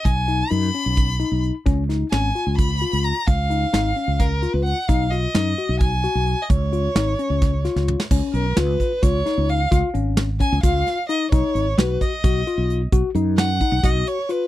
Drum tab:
CC |--------------|--------------|--------------|--------------|
HH |x-x-x-x-x-x-x-|x-x-x-x-x-x-x-|x-x-x-x-x-x-x-|x-x-x-x-x-x-x-|
SD |--------------|--o-o---------|----o---------|----o---------|
T2 |--------------|--------------|--------------|--------------|
BD |o-------o-----|o-------o-----|o-------o-----|o-------o-----|

CC |--------------|x-------------|--------------|--------------|
HH |x-x-x-x-x-x---|--x-x-x-x-x-x-|x-x-x-x-x-x-x-|x-x-x-x-x-x-x-|
SD |----o---o-oo-o|----o-----o---|----o-----o---|----o---------|
T2 |------------o-|--------------|--------------|--------------|
BD |o-------o-----|o-----o-o-----|o-----o-o-----|o-----o-o-----|

CC |--------------|
HH |x-x-x-x-x-x-x-|
SD |----o---------|
T2 |--------------|
BD |o-----o-o-----|